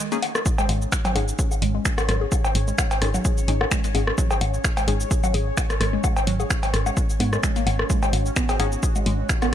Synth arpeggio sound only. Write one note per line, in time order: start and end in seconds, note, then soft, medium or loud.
0.12 0.14 A#3 medium
0.58 0.62 G#3 medium
0.69 0.73 G#3 medium
1.05 1.09 F#3 loud
1.15 1.20 G#4 medium
1.62 1.66 G#3 medium
1.75 1.78 G#3 medium
2.09 2.13 F#3 loud
2.21 2.25 G#4 medium
2.68 2.71 G#3 medium
2.78 2.83 G#3 medium
3.14 3.18 F#3 loud
3.25 3.29 G#4 medium
3.72 3.76 G#3 medium
3.84 3.88 G#3 medium
4.18 4.22 F#3 loud
4.31 4.34 G#4 medium
4.77 4.81 G#3 medium
4.88 4.92 G#3 medium
5.24 5.27 F#3 loud
5.34 5.39 G#4 medium
5.81 5.85 G#3 medium
5.93 5.97 G#3 medium
6.27 6.32 F#3 loud
6.40 6.43 G#4 medium
6.86 6.90 G#3 medium
6.97 7.01 G#3 medium
7.20 7.23 B3 medium
7.33 7.36 G#3 medium
7.43 7.48 G#3 medium
7.56 7.60 A#3 loud
7.90 7.94 G#3 medium
8.03 8.06 G#3 medium
8.36 8.43 B3 loud
8.49 8.53 G#4 medium
8.96 8.99 G#3 medium
9.06 9.11 G#3 medium
9.42 9.48 B3 loud